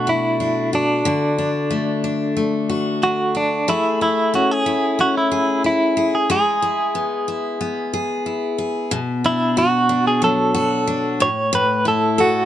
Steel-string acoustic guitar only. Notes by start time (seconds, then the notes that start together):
Already playing: B2 A3 D4
0.07 F#4
0.40 D4
0.73 F#4
1.05 D3 F#4
1.38 D4
1.71 A3
2.04 D4
2.37 A3
2.69 F#4
3.03 D4
3.35 F#4
3.68 A3 G#4
4.01 E4
4.34 C#4
4.66 E4
4.99 C#4
5.31 G#4
5.64 E4
5.97 G#4
6.30 G#3 G#4
6.62 E4
6.95 B3
7.28 E4
7.61 B3
7.93 G#4
8.26 E4
8.58 G#4
8.91 B2
9.24 D4
9.57 F#4
9.89 D4
10.22 F#3
10.54 F#4
10.87 D4
11.20 A2
11.53 A2
11.85 E4
12.18 A4